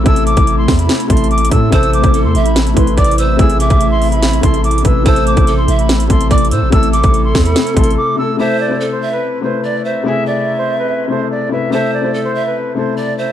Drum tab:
HH |x--x--x--x--x-----o--x--x--x--x-x-x-x-x-x-x-----|x--x--x--x--x-----x--x--x--x--x--x--x-x-x-x-----|x--x--x--x--x-----o--x--x--x--x--x--x-x-x-x-----|x--x--x--x--x-----x--x--x--x--x--x--x-x-x-x-----|
SD |------------------o-----o-----------------------|------------------------o-----------------------|------------------------o-----------------------|------------------------o-----------------------|
BD |o--------o--------o-----------o-----------o-----|o--------o--------------------o-----o-----------|o--------o--------------------o-----------o-----|o--------o--------------------o-----o-----------|

HH |x--x--x--x--x-----o--x--x--x--x-x-x-------------|------------------------------------------------|------------------------------------------------|------------------------------------------------|
SD |------------------o-----o-----------------------|------------------------------------------------|------------------------------------------------|------------------------------------------------|
BD |o--------o--------o-----------o-----------------|------------------------------------------------|------------------------------------------------|------------------------------------------------|